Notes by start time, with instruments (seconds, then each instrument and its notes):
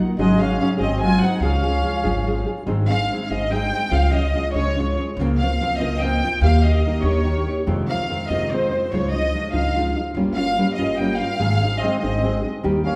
0.00 nylon-string guitar A#3 D#4 F4
0.17 upright bass G#1, nylon-string guitar G#2 C#3 F#3 C#4 D#4 G#4, trumpet G#3, violin section D#5
0.38 nylon-string guitar F#3 C#4 D#4 G#4, violin section F5
0.42 trumpet C#4
0.60 nylon-string guitar F#3 C#4 D#4 G#4, trumpet C#4, violin section F5
0.78 upright bass G#1, nylon-string guitar G#2 D#3 F#3 G#3 C4 G#4, violin section D#5
0.82 trumpet C4
1.02 nylon-string guitar F#3 G#3 C4 G#4, trumpet F4, violin section G#5
1.22 nylon-string guitar F#3 G#3 C4 G#4, trumpet D#4, violin section F#5
1.40 upright bass C#2, nylon-string guitar C#3 F3 G#3 F4 G#4
1.44 trumpet C#4, violin section F5
1.63 nylon-string guitar G#3 F4 G#4
1.83 nylon-string guitar F3 G#3 F4 G#4
2.03 upright bass G#1, nylon-string guitar C#3 F3 G#3 F4 G#4
2.27 nylon-string guitar F3 G#3 F4 G#4
2.46 nylon-string guitar G#3 F4 G#4
2.67 upright bass G#1, nylon-string guitar G#2 D#3 G#3 C4 D#4 G#4
2.89 nylon-string guitar G#3 C4 D#4 G#4, violin section F5
3.12 nylon-string guitar G#3 C4 D#4 G#4
3.26 upright bass G#1, violin section F5
3.31 nylon-string guitar G#2 D#3 G#3 C4 D#4 G#4, violin section D#5
3.51 nylon-string guitar G#3 C4 D#4 G#4, violin section G5
3.72 nylon-string guitar G#3 C4 D#4 G#4
3.91 upright bass C#2, nylon-string guitar C#3 F3 G#3 C#4 F4, violin section F5
4.13 nylon-string guitar G#3 C#4 F4, violin section D#5
4.34 nylon-string guitar F3 G#3 C#4 F4
4.54 upright bass C#2, nylon-string guitar C#3 F3 G#3 C#4 F4, violin section C#5
4.78 nylon-string guitar F3 G#3 C#4 F4
4.97 nylon-string guitar G#3 C#4 F4
5.17 upright bass C#2, nylon-string guitar C#3 F3 C4
5.21 nylon-string guitar A#3 F4
5.38 violin section F5
5.43 nylon-string guitar A#3 C4 F4
5.61 nylon-string guitar F3 A#3 C4 F4
5.78 upright bass C#2, nylon-string guitar C#3 F3 A#3 C4 F4, violin section D#5
6.01 nylon-string guitar F3 A#3 C4 F4, violin section G5
6.25 nylon-string guitar A#3 C4 F4
6.41 upright bass D#2, nylon-string guitar D#3 A#3 D#4 G4, violin section F5
6.64 nylon-string guitar A#3 D#4 G4, violin section D#5
6.86 nylon-string guitar D#3 A#3 D#4 G4
7.03 upright bass D#2, nylon-string guitar D#3 A#3 D#4 G4, violin section C#5
7.24 nylon-string guitar D#3 A#3 D#4 G4
7.47 nylon-string guitar A#3 D#4 G4
7.67 nylon-string guitar F2 C3 D#3 G#3 C4 F4, upright bass F2
7.90 nylon-string guitar D#3 G#3 C4 F4, violin section F5
8.10 nylon-string guitar D#3 G#3 C4 F4
8.29 upright bass F2, nylon-string guitar F2 C3 D#3 G#3 C4 F4, violin section D#5
8.52 nylon-string guitar D#3 G#3 C4 F4, violin section C5
8.72 nylon-string guitar D#3 G#3 C4 F4
8.92 upright bass C#2, nylon-string guitar C#3 F3 G#3 D#4 F4, violin section C#5
9.11 violin section D#5
9.16 nylon-string guitar G#3 D#4 F4
9.34 nylon-string guitar F3 G#3 D#4 F4
9.53 upright bass C#2, nylon-string guitar C#3 F3 G#3 D#4 F4, violin section F5
9.76 nylon-string guitar F3 G#3 D#4 F4
9.96 nylon-string guitar G#3 D#4 F4
10.15 upright bass G1, nylon-string guitar G3 A#3 C#4 F4
10.34 violin section F5
10.38 nylon-string guitar A#3 C#4 F4
10.58 nylon-string guitar G3 A#3 C#4 F4
10.75 violin section D#5
10.79 upright bass G1, nylon-string guitar G3 A#3 C#4 F4
10.97 nylon-string guitar G3 A#3 C#4, violin section G5
11.02 nylon-string guitar F4
11.16 nylon-string guitar F4, violin section F5
11.21 nylon-string guitar A#3 C#4
11.39 upright bass G#1, nylon-string guitar G#2 D#3 G#3 C4 D#4 G#4
11.62 nylon-string guitar G#3 C4 D#4 G#4
11.78 trumpet C4, violin section D#5
11.83 nylon-string guitar G#3 C4 D#4 G#4
11.99 trumpet C4, violin section D#5
12.03 upright bass G#1, nylon-string guitar G#2 D#3 G#3 C4 D#4 G#4
12.23 nylon-string guitar G#3 C4 D#4 G#4
12.42 nylon-string guitar G#3 C4 D#4 G#4
12.63 upright bass D#2, nylon-string guitar D#3 G3 A#3 D#4 G4
12.85 nylon-string guitar A#3 D#4 G4, trumpet C#4, violin section F5